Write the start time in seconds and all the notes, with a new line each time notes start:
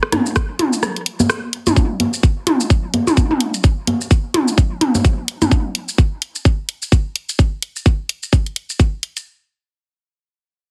0.03 cross-stick
0.12 cross-stick, closed hi-hat, mid tom, high conga
0.26 shaker
0.36 kick, cross-stick, shaker
0.59 closed hi-hat, mid tom
0.73 shaker
0.83 cross-stick, shaker
0.96 closed hi-hat
1.06 closed hi-hat
1.20 high conga, shaker
1.30 cross-stick, shaker
1.53 closed hi-hat
1.67 closed hi-hat, mid tom, high conga, shaker
1.76 kick, shaker
2.00 closed hi-hat, high conga
2.14 shaker
2.23 kick, shaker
2.47 closed hi-hat, mid tom
2.60 shaker
2.70 kick, shaker
2.94 closed hi-hat, high conga
3.07 mid tom, shaker
3.17 kick, shaker
3.31 mid tom
3.40 closed hi-hat
3.54 closed hi-hat, shaker
3.64 kick, shaker
3.87 closed hi-hat, high conga
4.01 shaker
4.11 kick, shaker
4.34 closed hi-hat, mid tom
4.48 shaker
4.58 kick, shaker
4.81 closed hi-hat, mid tom
4.95 high conga, shaker
5.05 kick, shaker
5.28 closed hi-hat
5.42 closed hi-hat, mid tom, high conga, shaker
5.51 kick, shaker
5.75 closed hi-hat
5.89 shaker
5.98 kick, shaker
6.22 closed hi-hat
6.36 shaker
6.45 kick, shaker
6.69 closed hi-hat
6.82 shaker
6.92 kick, shaker
7.16 closed hi-hat
7.29 closed hi-hat, shaker
7.39 kick, shaker
7.62 closed hi-hat
7.76 shaker
7.86 kick, shaker
8.09 closed hi-hat
8.23 shaker
8.33 kick, shaker
8.46 closed hi-hat
8.56 closed hi-hat
8.70 shaker
8.80 kick, shaker
9.03 closed hi-hat
9.17 closed hi-hat, shaker